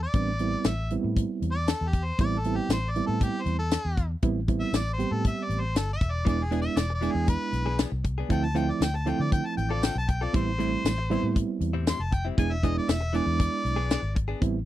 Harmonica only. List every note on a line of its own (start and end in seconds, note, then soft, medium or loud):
0.03 0.68 D5 loud
0.67 0.91 E5 medium
1.52 1.71 D5 medium
1.70 1.89 A4 medium
1.88 2.06 G4 medium
2.04 2.19 C5 medium
2.20 2.40 D5 loud
2.39 2.57 A4 medium
2.56 2.71 G4 loud
2.73 2.92 C5 loud
2.90 3.05 D5 medium
3.07 3.24 A4 medium
3.23 3.43 G4 medium
3.42 3.56 C5 medium
3.59 4.06 A4 medium
4.60 4.79 E5 loud
4.77 4.92 D5 medium
4.93 5.13 C5 medium
5.12 5.26 A4 loud
5.27 5.45 E5 medium
5.44 5.62 D5 medium
5.60 5.78 C5 medium
5.77 5.92 A4 medium
5.93 6.12 E5 medium
6.11 6.27 D5 medium
6.28 6.45 D5 loud
6.44 6.60 G#4 medium
6.61 6.80 E5 loud
6.78 6.94 D5 loud
6.95 7.13 D5 medium
7.12 7.28 G#4 loud
7.29 7.78 B4 loud
8.32 8.46 G5 loud
8.45 8.59 A5 loud
8.57 8.72 G5 loud
8.71 8.82 D5 medium
8.83 8.97 G5 medium
8.96 9.10 A5 medium
9.09 9.23 G5 loud
9.22 9.32 D5 loud
9.33 9.48 G5 loud
9.46 9.56 A5 medium
9.57 9.73 G5 loud
9.71 9.86 D5 medium
9.84 9.96 G5 loud
9.98 10.11 A5 loud
10.10 10.25 G5 loud
10.24 10.34 D5 medium
10.36 11.34 C5 loud
11.89 12.04 C6 medium
12.02 12.15 A5 medium
12.14 12.26 G5 medium
12.39 12.54 G#5 loud
12.52 12.67 E5 loud
12.65 12.77 D#5 medium
12.78 12.92 D5 medium
12.90 13.16 E5 loud
13.15 14.13 D5 loud